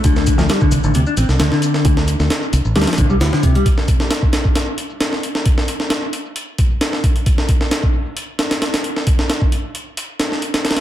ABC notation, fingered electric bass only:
X:1
M:4/4
L:1/16
Q:"Swing 16ths" 1/4=133
K:Dm
V:1 name="Fingered electric bass" clef=bass
D,,3 D,, z2 C,, A,,, D,, z A,,, C,, D,, z3 | D,,3 D,, z2 C,, A,,, D,, z A,,, C,, D,, z3 | z16 | z16 |
z16 | z16 |]